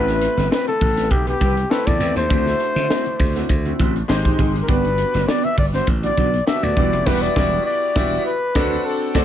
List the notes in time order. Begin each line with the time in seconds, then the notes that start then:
Already playing: A1 A3 C4 E4 G4 B4
0.08 muted clean electric guitar stroke, snare, closed hi-hat
0.21 muted clean electric guitar stroke, closed hi-hat
0.37 G1 C4 G4 B4, snare, closed hi-hat, high conga
0.51 C4 G4 B4, snare
0.67 A4, muted clean electric guitar stroke, closed hi-hat, muted conga
0.81 A1, muted clean electric guitar stroke, kick, open hi-hat, high conga, low conga
0.97 C4 G4 B4, snare, closed hi-hat
1.11 B1 G4, muted clean electric guitar stroke, kick, closed hi-hat, muted conga
1.27 C4 G4 B4, closed hi-hat, muted conga
1.40 C2 C4 G4 B4, kick, closed hi-hat, high conga
1.57 muted clean electric guitar stroke, closed hi-hat
1.70 A3 C4 E4 G4 A4 B4, snare, muted conga
1.87 E2 D5, kick, closed hi-hat, low conga
2.00 E2 C4 G4 B4, closed hi-hat, high conga
2.16 D#2 C5, muted clean electric guitar stroke, closed hi-hat
2.29 D2 A3 C4 D4 E4 F#4 C5, kick, closed hi-hat
2.46 muted clean electric guitar stroke, snare, closed hi-hat, muted conga
2.60 muted clean electric guitar stroke, closed hi-hat
2.76 D3 C4 E4 F#4, snare, closed hi-hat, high conga
2.89 C4 E4 F#4, snare
3.06 muted clean electric guitar stroke, closed hi-hat, muted conga
3.19 D2, muted clean electric guitar stroke, kick, open hi-hat, high conga, low conga
3.35 C4 E4 F#4, snare, closed hi-hat
3.49 D2, muted clean electric guitar stroke, kick, closed hi-hat
3.65 C4 E4 F#4, closed hi-hat
3.79 A1 C4 E4 F#4, kick, closed hi-hat, high conga
3.96 muted clean electric guitar stroke, closed hi-hat
4.08 G#1 G#3 C4 D#4 G4 C5, snare
4.24 C4 D#4 G4, kick, closed hi-hat, muted conga, low conga
4.38 G#1 C4 D#4 G4, kick, closed hi-hat, high conga
4.55 muted clean electric guitar stroke, closed hi-hat
4.63 A#4
4.68 G1 B3 D4 F#4 G4 B4 D5, kick, closed hi-hat, muted conga
4.85 muted clean electric guitar stroke, closed hi-hat, muted conga
4.98 muted clean electric guitar stroke, closed hi-hat
5.14 F#1 B3 D4 F#4, snare, closed hi-hat, high conga
5.28 B3 D4 F#4 D5, snare, muted conga
5.44 E5, muted clean electric guitar stroke, closed hi-hat, muted conga
5.57 G1 D5, muted clean electric guitar stroke, kick, open hi-hat, high conga, low conga
5.73 B3 D4 F#4 C5, snare, closed hi-hat
5.87 A1, muted clean electric guitar stroke, kick, closed hi-hat, muted conga
6.03 B3 D4 F#4 D5, closed hi-hat, muted conga
6.17 B1 B3 D4 F#4, kick, closed hi-hat, high conga
6.33 muted clean electric guitar stroke, closed hi-hat
6.47 B3 D4 F#4 G4 E5, snare, muted conga
6.63 D2 D5, closed hi-hat, low conga
6.76 E1 G3 B3 D4 E4 F#4 G4 D5, kick, closed hi-hat, high conga
6.92 F1, muted clean electric guitar stroke, closed hi-hat
7.06 E1 G3 B3 D4 E4 F#4 G4 B4 D5, kick, snare, crash
7.22 D5
7.35 E1 G3 B3 D4 E4 F#4 G4 D5, kick, snare
7.66 D5
7.95 E1 G3 B3 D4 E4 F#4 G4 D5, kick, snare
8.25 B4
8.55 D2 A3 C4 D4 F#4 A4 D5, kick, snare
8.86 A4
9.14 D2 A3 C4 D4 F#4 A4 D5, kick, snare, crash